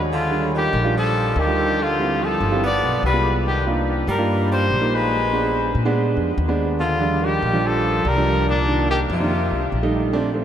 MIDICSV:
0, 0, Header, 1, 5, 480
1, 0, Start_track
1, 0, Tempo, 418118
1, 121, Time_signature, 4, 2, 24, 8
1, 11990, End_track
2, 0, Start_track
2, 0, Title_t, "Trumpet"
2, 0, Program_c, 0, 56
2, 158, Note_on_c, 0, 65, 88
2, 588, Note_off_c, 0, 65, 0
2, 653, Note_on_c, 0, 67, 96
2, 1076, Note_off_c, 0, 67, 0
2, 1125, Note_on_c, 0, 69, 94
2, 1605, Note_on_c, 0, 67, 97
2, 1622, Note_off_c, 0, 69, 0
2, 2098, Note_on_c, 0, 65, 103
2, 2115, Note_off_c, 0, 67, 0
2, 2573, Note_on_c, 0, 69, 90
2, 2590, Note_off_c, 0, 65, 0
2, 3029, Note_off_c, 0, 69, 0
2, 3048, Note_on_c, 0, 74, 104
2, 3475, Note_off_c, 0, 74, 0
2, 3509, Note_on_c, 0, 71, 106
2, 3833, Note_off_c, 0, 71, 0
2, 3984, Note_on_c, 0, 67, 95
2, 4199, Note_off_c, 0, 67, 0
2, 4706, Note_on_c, 0, 70, 88
2, 5144, Note_off_c, 0, 70, 0
2, 5196, Note_on_c, 0, 72, 103
2, 5681, Note_on_c, 0, 71, 95
2, 5699, Note_off_c, 0, 72, 0
2, 6624, Note_off_c, 0, 71, 0
2, 7807, Note_on_c, 0, 65, 98
2, 8317, Note_on_c, 0, 67, 99
2, 8334, Note_off_c, 0, 65, 0
2, 8800, Note_on_c, 0, 69, 100
2, 8818, Note_off_c, 0, 67, 0
2, 9279, Note_on_c, 0, 70, 109
2, 9296, Note_off_c, 0, 69, 0
2, 9742, Note_off_c, 0, 70, 0
2, 9752, Note_on_c, 0, 62, 105
2, 10186, Note_off_c, 0, 62, 0
2, 10223, Note_on_c, 0, 67, 97
2, 10327, Note_off_c, 0, 67, 0
2, 10473, Note_on_c, 0, 65, 84
2, 11132, Note_off_c, 0, 65, 0
2, 11990, End_track
3, 0, Start_track
3, 0, Title_t, "Grand piano"
3, 0, Program_c, 1, 0
3, 0, Note_on_c, 1, 56, 70
3, 0, Note_on_c, 1, 62, 66
3, 0, Note_on_c, 1, 66, 79
3, 119, Note_off_c, 1, 62, 0
3, 120, Note_off_c, 1, 56, 0
3, 120, Note_off_c, 1, 66, 0
3, 357, Note_on_c, 1, 55, 63
3, 357, Note_on_c, 1, 62, 56
3, 359, Note_on_c, 1, 65, 67
3, 780, Note_off_c, 1, 55, 0
3, 780, Note_off_c, 1, 62, 0
3, 781, Note_off_c, 1, 65, 0
3, 962, Note_on_c, 1, 55, 73
3, 965, Note_on_c, 1, 62, 75
3, 968, Note_on_c, 1, 65, 86
3, 1467, Note_off_c, 1, 55, 0
3, 1469, Note_off_c, 1, 62, 0
3, 1470, Note_off_c, 1, 65, 0
3, 1684, Note_on_c, 1, 55, 76
3, 1686, Note_on_c, 1, 62, 64
3, 1687, Note_on_c, 1, 65, 78
3, 2045, Note_off_c, 1, 55, 0
3, 2045, Note_off_c, 1, 62, 0
3, 2046, Note_off_c, 1, 65, 0
3, 2290, Note_on_c, 1, 55, 67
3, 2291, Note_on_c, 1, 65, 76
3, 2292, Note_on_c, 1, 60, 59
3, 2294, Note_on_c, 1, 64, 58
3, 2708, Note_off_c, 1, 55, 0
3, 2708, Note_off_c, 1, 65, 0
3, 2709, Note_off_c, 1, 60, 0
3, 2710, Note_off_c, 1, 64, 0
3, 2889, Note_on_c, 1, 60, 72
3, 2891, Note_on_c, 1, 55, 83
3, 2891, Note_on_c, 1, 64, 74
3, 2892, Note_on_c, 1, 65, 88
3, 3007, Note_off_c, 1, 60, 0
3, 3008, Note_off_c, 1, 55, 0
3, 3008, Note_off_c, 1, 64, 0
3, 3009, Note_off_c, 1, 65, 0
3, 3603, Note_on_c, 1, 56, 75
3, 3604, Note_on_c, 1, 59, 70
3, 3604, Note_on_c, 1, 65, 72
3, 3965, Note_off_c, 1, 56, 0
3, 3965, Note_off_c, 1, 59, 0
3, 3965, Note_off_c, 1, 65, 0
3, 4208, Note_on_c, 1, 58, 65
3, 4209, Note_on_c, 1, 65, 70
3, 4211, Note_on_c, 1, 63, 59
3, 4212, Note_on_c, 1, 62, 66
3, 4627, Note_off_c, 1, 58, 0
3, 4628, Note_off_c, 1, 65, 0
3, 4629, Note_off_c, 1, 62, 0
3, 4629, Note_off_c, 1, 63, 0
3, 4803, Note_on_c, 1, 58, 84
3, 4803, Note_on_c, 1, 62, 75
3, 4807, Note_on_c, 1, 63, 66
3, 4808, Note_on_c, 1, 65, 87
3, 5309, Note_off_c, 1, 58, 0
3, 5309, Note_off_c, 1, 62, 0
3, 5311, Note_off_c, 1, 63, 0
3, 5311, Note_off_c, 1, 65, 0
3, 5521, Note_on_c, 1, 62, 62
3, 5521, Note_on_c, 1, 63, 65
3, 5523, Note_on_c, 1, 58, 77
3, 5526, Note_on_c, 1, 65, 80
3, 5884, Note_off_c, 1, 62, 0
3, 5884, Note_off_c, 1, 63, 0
3, 5885, Note_off_c, 1, 58, 0
3, 5886, Note_off_c, 1, 65, 0
3, 6117, Note_on_c, 1, 56, 66
3, 6122, Note_on_c, 1, 62, 71
3, 6123, Note_on_c, 1, 59, 62
3, 6542, Note_off_c, 1, 56, 0
3, 6545, Note_off_c, 1, 59, 0
3, 6545, Note_off_c, 1, 62, 0
3, 6720, Note_on_c, 1, 56, 99
3, 6724, Note_on_c, 1, 59, 86
3, 6728, Note_on_c, 1, 62, 102
3, 7227, Note_off_c, 1, 56, 0
3, 7229, Note_off_c, 1, 59, 0
3, 7231, Note_off_c, 1, 62, 0
3, 7440, Note_on_c, 1, 56, 84
3, 7447, Note_on_c, 1, 59, 78
3, 7450, Note_on_c, 1, 62, 96
3, 7803, Note_off_c, 1, 56, 0
3, 7807, Note_off_c, 1, 59, 0
3, 7808, Note_off_c, 1, 62, 0
3, 8042, Note_on_c, 1, 53, 60
3, 8045, Note_on_c, 1, 55, 59
3, 8047, Note_on_c, 1, 62, 83
3, 8464, Note_off_c, 1, 53, 0
3, 8465, Note_off_c, 1, 55, 0
3, 8467, Note_off_c, 1, 62, 0
3, 8646, Note_on_c, 1, 53, 87
3, 8647, Note_on_c, 1, 55, 76
3, 8653, Note_on_c, 1, 62, 88
3, 9150, Note_off_c, 1, 53, 0
3, 9150, Note_off_c, 1, 55, 0
3, 9153, Note_off_c, 1, 62, 0
3, 9373, Note_on_c, 1, 53, 67
3, 9376, Note_on_c, 1, 62, 81
3, 9378, Note_on_c, 1, 55, 72
3, 9729, Note_off_c, 1, 53, 0
3, 9730, Note_off_c, 1, 62, 0
3, 9731, Note_off_c, 1, 55, 0
3, 9970, Note_on_c, 1, 51, 64
3, 9973, Note_on_c, 1, 62, 78
3, 9975, Note_on_c, 1, 58, 57
3, 10387, Note_off_c, 1, 51, 0
3, 10388, Note_off_c, 1, 62, 0
3, 10390, Note_off_c, 1, 58, 0
3, 10564, Note_on_c, 1, 51, 73
3, 10565, Note_on_c, 1, 58, 72
3, 10572, Note_on_c, 1, 62, 86
3, 10684, Note_off_c, 1, 51, 0
3, 10684, Note_off_c, 1, 58, 0
3, 10688, Note_off_c, 1, 62, 0
3, 11283, Note_on_c, 1, 55, 79
3, 11283, Note_on_c, 1, 57, 78
3, 11287, Note_on_c, 1, 63, 95
3, 11615, Note_off_c, 1, 57, 0
3, 11629, Note_on_c, 1, 60, 80
3, 11632, Note_on_c, 1, 57, 93
3, 11634, Note_on_c, 1, 62, 108
3, 11643, Note_off_c, 1, 55, 0
3, 11645, Note_off_c, 1, 63, 0
3, 11804, Note_off_c, 1, 60, 0
3, 11805, Note_off_c, 1, 57, 0
3, 11806, Note_off_c, 1, 62, 0
3, 11870, Note_on_c, 1, 60, 77
3, 11871, Note_on_c, 1, 57, 79
3, 11872, Note_on_c, 1, 62, 82
3, 11990, Note_off_c, 1, 57, 0
3, 11990, Note_off_c, 1, 60, 0
3, 11990, Note_off_c, 1, 62, 0
3, 11990, End_track
4, 0, Start_track
4, 0, Title_t, "Tenor saxophone"
4, 0, Program_c, 2, 66
4, 146, Note_on_c, 2, 50, 82
4, 581, Note_off_c, 2, 50, 0
4, 631, Note_on_c, 2, 51, 77
4, 1065, Note_off_c, 2, 51, 0
4, 1115, Note_on_c, 2, 53, 91
4, 1588, Note_on_c, 2, 51, 90
4, 1605, Note_off_c, 2, 53, 0
4, 2069, Note_on_c, 2, 50, 78
4, 2086, Note_off_c, 2, 51, 0
4, 2543, Note_on_c, 2, 53, 79
4, 2561, Note_off_c, 2, 50, 0
4, 3015, Note_off_c, 2, 53, 0
4, 3025, Note_on_c, 2, 59, 95
4, 3462, Note_off_c, 2, 59, 0
4, 3505, Note_on_c, 2, 55, 89
4, 3831, Note_off_c, 2, 55, 0
4, 3977, Note_on_c, 2, 51, 69
4, 4195, Note_off_c, 2, 51, 0
4, 4688, Note_on_c, 2, 55, 84
4, 5134, Note_off_c, 2, 55, 0
4, 5186, Note_on_c, 2, 55, 86
4, 5673, Note_on_c, 2, 56, 89
4, 5691, Note_off_c, 2, 55, 0
4, 6620, Note_off_c, 2, 56, 0
4, 7803, Note_on_c, 2, 50, 80
4, 8287, Note_on_c, 2, 51, 82
4, 8304, Note_off_c, 2, 50, 0
4, 8776, Note_on_c, 2, 53, 85
4, 8793, Note_off_c, 2, 51, 0
4, 9258, Note_on_c, 2, 55, 99
4, 9275, Note_off_c, 2, 53, 0
4, 9721, Note_off_c, 2, 55, 0
4, 9728, Note_on_c, 2, 46, 80
4, 10172, Note_off_c, 2, 46, 0
4, 10220, Note_on_c, 2, 51, 75
4, 10324, Note_off_c, 2, 51, 0
4, 10465, Note_on_c, 2, 48, 75
4, 11128, Note_off_c, 2, 48, 0
4, 11990, End_track
5, 0, Start_track
5, 0, Title_t, "Upright bass"
5, 0, Program_c, 3, 32
5, 0, Note_on_c, 3, 39, 83
5, 769, Note_off_c, 3, 39, 0
5, 838, Note_on_c, 3, 34, 101
5, 1515, Note_off_c, 3, 34, 0
5, 1559, Note_on_c, 3, 38, 91
5, 2693, Note_off_c, 3, 38, 0
5, 2759, Note_on_c, 3, 31, 91
5, 3209, Note_off_c, 3, 31, 0
5, 3241, Note_on_c, 3, 35, 62
5, 3467, Note_off_c, 3, 35, 0
5, 3478, Note_on_c, 3, 36, 85
5, 4612, Note_off_c, 3, 36, 0
5, 4677, Note_on_c, 3, 43, 91
5, 5356, Note_off_c, 3, 43, 0
5, 5400, Note_on_c, 3, 34, 85
5, 6533, Note_off_c, 3, 34, 0
5, 6599, Note_on_c, 3, 46, 87
5, 7049, Note_off_c, 3, 46, 0
5, 7080, Note_on_c, 3, 41, 70
5, 7306, Note_off_c, 3, 41, 0
5, 7320, Note_on_c, 3, 39, 102
5, 8453, Note_off_c, 3, 39, 0
5, 8522, Note_on_c, 3, 34, 86
5, 9198, Note_off_c, 3, 34, 0
5, 9241, Note_on_c, 3, 36, 95
5, 10372, Note_off_c, 3, 36, 0
5, 10442, Note_on_c, 3, 41, 96
5, 10889, Note_off_c, 3, 41, 0
5, 10920, Note_on_c, 3, 36, 57
5, 11145, Note_off_c, 3, 36, 0
5, 11160, Note_on_c, 3, 34, 82
5, 11990, Note_off_c, 3, 34, 0
5, 11990, End_track
0, 0, End_of_file